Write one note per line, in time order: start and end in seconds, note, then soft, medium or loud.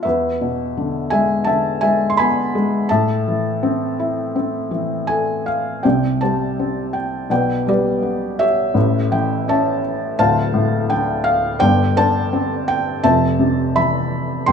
0.03 2.85 E2 medium
0.03 1.07 B4 medium
0.03 1.11 E5 medium
0.41 1.79 B2 medium
0.77 1.45 D3 medium
1.10 1.81 G#3 medium
1.10 1.45 E5 medium
1.10 1.47 G#5 medium
1.44 2.85 D3 medium
1.44 1.80 E5 medium
1.44 1.82 A5 medium
1.81 2.54 G#3 medium
1.81 2.09 E5 medium
1.81 2.11 G#5 medium
2.10 2.17 C6 medium
2.17 2.88 B3 soft
2.17 2.86 G#5 medium
2.17 2.85 B5 loud
2.55 2.89 G#3 medium
2.89 5.82 A2 medium
2.89 5.44 E5 medium
2.89 5.43 A5 medium
3.28 4.68 E3 medium
3.63 4.34 C4 medium
3.99 5.44 E4 medium
4.36 5.82 C4 medium
4.71 5.81 E3 medium
5.07 5.83 A4 medium
5.07 5.47 G#5 medium
5.46 5.85 F5 medium
5.83 7.27 C2 medium
5.83 7.27 C3 medium
5.83 6.21 C5 soft
5.83 6.20 D5 medium
5.83 6.22 G5 medium
6.21 7.28 G3 soft
6.21 7.27 C5 medium
6.21 7.27 D5 medium
6.21 6.96 A5 medium
6.59 7.29 C4 soft
6.93 7.30 G5 medium
7.30 8.71 B1 medium
7.30 8.71 B2 medium
7.30 7.68 B4 medium
7.30 7.67 D5 medium
7.30 7.65 G5 medium
7.67 8.72 G3 soft
7.67 8.37 G4 medium
7.67 8.72 B4 medium
7.67 8.42 D5 medium
8.03 8.73 B3 soft
8.39 9.79 G4 medium
8.39 9.47 C#5 medium
8.39 9.14 E5 medium
8.74 10.14 A1 medium
8.74 10.15 A2 medium
9.11 10.16 E3 medium
9.11 9.49 G5 medium
9.48 10.17 C#4 medium
9.48 10.16 C#5 medium
9.48 10.16 E5 medium
9.48 10.17 A5 medium
10.19 11.56 D1 medium
10.19 11.56 D2 medium
10.19 11.56 C5 medium
10.19 11.22 F5 medium
10.19 10.92 A5 loud
10.54 11.57 A2 medium
10.90 11.58 D3 medium
10.90 11.26 G5 medium
11.24 11.61 F5 loud
11.59 12.99 G1 medium
11.59 13.00 G2 medium
11.59 11.95 C5 medium
11.59 11.95 D5 medium
11.59 11.97 G5 loud
11.97 13.00 D3 medium
11.97 13.00 C5 medium
11.97 13.00 D5 medium
11.97 12.70 A5 loud
12.33 13.02 C4 medium
12.68 13.01 G5 loud
13.03 14.43 F1 medium
13.03 14.43 F2 medium
13.03 14.44 C5 medium
13.03 13.74 E5 medium
13.03 13.77 A5 loud
13.39 14.44 C3 medium
13.75 14.45 E3 medium
13.75 14.43 E5 medium
13.75 14.43 B5 medium
14.46 14.52 G1 medium
14.46 14.52 G2 medium
14.46 14.52 G5 medium
14.46 14.52 C6 medium